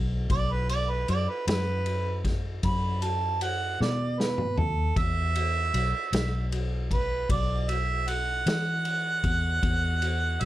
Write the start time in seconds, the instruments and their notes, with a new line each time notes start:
Already playing: fingered electric bass B1
0.30 fingered electric bass B1, harmonica D5, kick, ride
0.52 harmonica B4
0.69 harmonica D5, ride
0.90 harmonica B4
1.08 fingered electric bass F#2, harmonica D5, ride
1.29 harmonica B4
1.47 fingered electric bass F#2, harmonica B4, snare, ride
1.86 ride
2.25 kick, snare, ride
2.63 fingered electric bass F#2, harmonica B5, kick, ride
3.02 harmonica A5, ride
3.41 harmonica F#5, ride
3.81 fingered electric bass B2, harmonica D5, snare
4.20 harmonica B4, snare
4.38 mid tom
4.57 fingered electric bass D#2, harmonica A4, floor tom
4.96 fingered electric bass E2, harmonica E5, kick, ride
5.35 ride
5.74 fingered electric bass B1, ride
6.12 fingered electric bass B1, snare, ride
6.52 ride
6.91 harmonica B4, kick, ride
7.29 fingered electric bass B1, harmonica D5, kick, ride
7.69 harmonica E5, ride
8.08 harmonica F#5, ride
8.46 fingered electric bass E3, snare, ride
8.85 ride
9.24 fingered electric bass E2, kick, ride
9.63 fingered electric bass E2, kick, ride
10.02 ride
10.41 fingered electric bass B1, harmonica E5, ride